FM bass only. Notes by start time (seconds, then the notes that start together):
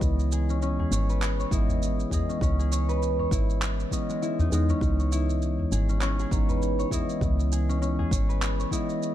0.01 C#2
0.91 G#1
1.51 G#1
2.41 C#2
3.31 G#1
4.52 E2
4.81 C#2
5.72 G#1
6.31 G#1
7.21 C#2
8.11 G#1